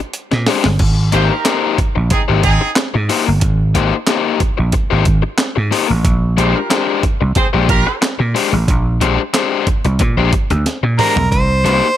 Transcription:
0.00 muted overdriven electric guitar stroke
0.13 closed hi-hat
0.31 slap bass A#2, muted overdriven electric guitar stroke, snare
0.47 overdriven electric guitar G#3 D4 G4 C5, snare, open hi-hat
0.64 slap bass G1, muted overdriven electric guitar stroke, snare
0.79 slap bass G#1, kick, crash
1.12 slap bass G#1, overdriven electric guitar A#3 D#4 G4 C5, horn section D#4 G4 C5, closed hi-hat
1.30 horn section D#4 G4 A#4
1.45 overdriven electric guitar A#3 D#4 G4 C5, snare, clap, closed hi-hat
1.78 muted overdriven electric guitar stroke, muted slap bass stroke, kick, closed hi-hat
1.96 slap bass A#1, muted overdriven electric guitar stroke
2.10 horn section C4 D#4 G#4, muted overdriven electric guitar stroke, muted slap bass stroke, kick, closed hi-hat
2.28 slap bass G#1, overdriven electric guitar A#3 D#4 G4 C5
2.43 horn section C4 D#4 G#4, muted overdriven electric guitar stroke, kick, closed hi-hat
2.61 muted overdriven electric guitar stroke
2.76 muted overdriven electric guitar stroke, snare, clap, closed hi-hat
2.94 slap bass G#2, muted overdriven electric guitar stroke
3.09 overdriven electric guitar A#3 D#4 G4 C5, open hi-hat
3.27 slap bass G1, muted overdriven electric guitar stroke
3.41 slap bass G#1, kick, closed hi-hat
3.75 slap bass G#1, overdriven electric guitar A#3 D#4 G4 C5, closed hi-hat
4.07 overdriven electric guitar A#3 D#4 G4 C5, snare, clap, closed hi-hat
4.40 muted overdriven electric guitar stroke, muted slap bass stroke, kick, closed hi-hat
4.58 slap bass A#1, muted overdriven electric guitar stroke
4.72 muted overdriven electric guitar stroke, muted slap bass stroke, kick, closed hi-hat
4.90 slap bass G#1, overdriven electric guitar A#3 D#4 G4 C5
5.05 muted overdriven electric guitar stroke, kick, closed hi-hat
5.22 muted overdriven electric guitar stroke
5.38 snare, clap, closed hi-hat
5.56 slap bass G#2, muted overdriven electric guitar stroke
5.71 overdriven electric guitar A#3 D#4 G4 C5, open hi-hat
5.89 slap bass A1, muted overdriven electric guitar stroke
6.05 slap bass A#1, kick, closed hi-hat
6.37 slap bass A#1, overdriven electric guitar G#3 D4 G4 C5, horn section C4 G#4 C5, closed hi-hat
6.55 horn section F4 G4 A#4
6.70 overdriven electric guitar G#3 D4 G4 C5, snare, clap, closed hi-hat
7.03 muted overdriven electric guitar stroke, muted slap bass stroke, kick, closed hi-hat
7.21 slap bass C2, muted overdriven electric guitar stroke
7.35 horn section C4 G#4 C5, muted slap bass stroke, muted overdriven electric guitar stroke, kick, closed hi-hat
7.53 slap bass A#1, overdriven electric guitar G#3 D4 G4 C5
7.69 horn section F4 G4 A#4, muted overdriven electric guitar stroke, kick, closed hi-hat
7.87 muted overdriven electric guitar stroke
8.01 muted overdriven electric guitar stroke, snare, clap, closed hi-hat
8.19 slap bass A#2, muted overdriven electric guitar stroke
8.35 overdriven electric guitar G#3 D4 G4 C5, open hi-hat
8.52 slap bass A1, muted overdriven electric guitar stroke
8.68 slap bass A#1, kick, closed hi-hat
9.01 slap bass A#1, overdriven electric guitar G#3 D4 G4 C5, closed hi-hat
9.34 overdriven electric guitar G#3 D4 G4 C5, snare, clap, closed hi-hat
9.67 muted overdriven electric guitar stroke, muted slap bass stroke, kick, closed hi-hat
9.85 slap bass C2, muted overdriven electric guitar stroke, closed hi-hat
9.99 slap bass A#2, muted overdriven electric guitar stroke, kick, closed hi-hat
10.17 slap bass A#1, overdriven electric guitar G#3 D4 G4 C5
10.33 muted overdriven electric guitar stroke, kick, closed hi-hat
10.50 slap bass D2, muted overdriven electric guitar stroke, closed hi-hat
10.66 snare, closed hi-hat
10.83 slap bass A#2, muted overdriven electric guitar stroke
10.98 overdriven electric guitar G#3 D4 G4 C5, harmonica A#4, mid tom, open hi-hat
11.16 slap bass B1, muted overdriven electric guitar stroke, floor tom
11.31 slap bass C2, harmonica C5, kick, closed hi-hat
11.64 slap bass C2, overdriven electric guitar A#3 D#4 G4 C5, closed hi-hat

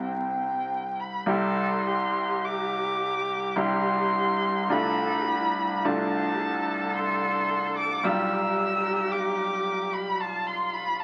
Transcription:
Already playing: grand piano C2 C4 E4 G4, cello C4
0.03 violin G5
1.00 violin B5
1.26 grand piano C2 G3 E4 G4, cello A4, violin C6
1.87 cello G4
2.44 violin D6
3.56 grand piano C2 G3 E4 G4, violin C6
4.69 grand piano C2 A3 D4 F4, cello A4, violin B5
5.29 cello E4
5.85 grand piano C2 A3 D4 F4, cello F4, violin A5
6.41 cello A4
6.96 violin C6
7.78 violin D6
8.03 grand piano B1 G3 F4 G4, cello G4, violin E6
9.12 violin D6
9.93 violin B5
10.20 cello F4, violin A5
10.47 violin C6
10.73 violin B5
11.00 violin A5

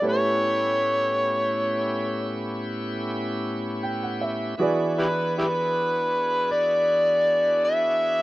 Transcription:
0.02 tonewheel organ A2 B3 C#4 E4 G4, upright piano A3 E4 G4 B4 C#5
0.09 harmonica C#5
3.83 upright piano G5
4.03 upright piano F#5
4.21 upright piano E5
4.58 tonewheel organ E3 B3 D4 F#4 G#4, upright piano E3 F#4 G#4 B4
4.62 upright piano D5
4.99 harmonica E4 G4 B4
5.39 harmonica E4 G4 B4
6.52 harmonica D5
7.65 harmonica E5

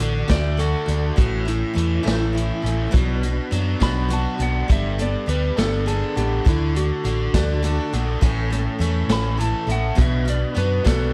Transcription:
Already playing: steel-string acoustic guitar D3, tonewheel organ D4 F#4 A4 D5
0.00 fingered electric bass A1, steel-string acoustic guitar A3 D4 F#4, closed hi-hat
0.28 fingered electric bass D2, steel-string acoustic guitar D3 A3 D4 F#4, electric slide guitar D5, kick, snare, closed hi-hat
0.57 steel-string acoustic guitar D3 A3 D4 F#4, electric slide guitar A4, closed hi-hat
0.86 fingered electric bass D2, steel-string acoustic guitar A3 D4 F#4, closed hi-hat
1.16 fingered electric bass A1, steel-string acoustic guitar A2 E3 A3 C#4 E4, tonewheel organ C#4 E4 A4 C#5, electric slide guitar F#4, kick, closed hi-hat
1.45 steel-string acoustic guitar A3 C#4 E4, electric slide guitar E4, closed hi-hat
1.74 fingered electric bass E2, steel-string acoustic guitar E3 A3 C#4 E4
1.78 closed hi-hat
2.03 fingered electric bass A1, steel-string acoustic guitar A2 E3 A3 C#4 E4
2.07 snare, closed hi-hat
2.33 steel-string acoustic guitar E3 A3 C#4 E4
2.37 closed hi-hat
2.62 fingered electric bass A1, steel-string acoustic guitar A3 C#4 E4, closed hi-hat
2.91 fingered electric bass B1, steel-string acoustic guitar B2 F#3 B3 D4 F#4, tonewheel organ B3 D4 F#4 B4, kick, closed hi-hat
3.23 steel-string acoustic guitar B3 D4 F#4, closed hi-hat
3.51 fingered electric bass F#2, steel-string acoustic guitar F#3 B3 D4 F#4, closed hi-hat
3.80 fingered electric bass B1, steel-string acoustic guitar B2 F#3 B3 D4 F#4, electric slide guitar B5, kick, snare, closed hi-hat
4.08 steel-string acoustic guitar F#3 B3 D4 F#4, closed hi-hat
4.13 electric slide guitar A5
4.37 fingered electric bass B1, steel-string acoustic guitar B3 D4 F#4, closed hi-hat
4.43 electric slide guitar F#5
4.67 fingered electric bass G1, steel-string acoustic guitar G3 B3 D4 A4, tonewheel organ B3 D4 G4 A4, kick, closed hi-hat
4.72 electric slide guitar E5
4.98 steel-string acoustic guitar B3 D4 A4, electric slide guitar D5, closed hi-hat
5.26 fingered electric bass D2, steel-string acoustic guitar G3 B3 D4 A4, electric slide guitar B4, closed hi-hat
5.57 fingered electric bass G1, steel-string acoustic guitar G3 B3 D4 A4, electric slide guitar A4, snare, closed hi-hat
5.86 steel-string acoustic guitar G3 B3 D4 A4, electric slide guitar G#4, closed hi-hat
6.15 fingered electric bass A1, steel-string acoustic guitar B3 D4 A4, electric slide guitar G4, closed hi-hat
6.44 fingered electric bass D2, steel-string acoustic guitar D3 A3 D4 F#4, tonewheel organ A3 D4 F#4 A4, kick, closed hi-hat
6.49 electric slide guitar E4
6.75 steel-string acoustic guitar A3 D4 F#4, electric slide guitar F#4, closed hi-hat
7.04 fingered electric bass A1, steel-string acoustic guitar D3 A3 D4 F#4, closed hi-hat
7.34 fingered electric bass D2, steel-string acoustic guitar D3 A3 D4 F#4, kick, snare, closed hi-hat
7.62 steel-string acoustic guitar D3 A3 D4 F#4, overdriven electric guitar A4, closed hi-hat
7.93 fingered electric bass A#1, steel-string acoustic guitar A3 D4 F#4, closed hi-hat
8.20 fingered electric bass A1, steel-string acoustic guitar A2 E3 A3 C#4 A4, tonewheel organ A3 C#4 E4 A4, kick, closed hi-hat
8.50 steel-string acoustic guitar A3 C#4 A4, closed hi-hat
8.79 fingered electric bass E2, steel-string acoustic guitar E3 A3 C#4 A4, closed hi-hat
9.08 fingered electric bass A1, steel-string acoustic guitar A2 E3 A3 C#4 A4, snare, closed hi-hat
9.12 electric slide guitar B5
9.37 steel-string acoustic guitar E3 A3 C#4 A4, electric slide guitar A5, closed hi-hat
9.67 fingered electric bass A1, steel-string acoustic guitar A3 C#4 A4, overdriven electric guitar E4, closed hi-hat
9.72 electric slide guitar F#5
9.95 fingered electric bass B1, steel-string acoustic guitar B2 F#3 B3 D4 F#4, tonewheel organ B3 D4, kick, closed hi-hat
9.99 tonewheel organ F#4 B4, electric slide guitar E5
10.25 steel-string acoustic guitar B3 D4 F#4, closed hi-hat
10.30 electric slide guitar D5
10.55 fingered electric bass F#2, steel-string acoustic guitar F#3 B3 D4 F#4, electric slide guitar B4, closed hi-hat
10.84 fingered electric bass B1, steel-string acoustic guitar B2 F#3 B3 D4 F#4, electric slide guitar A4, kick, snare, closed hi-hat

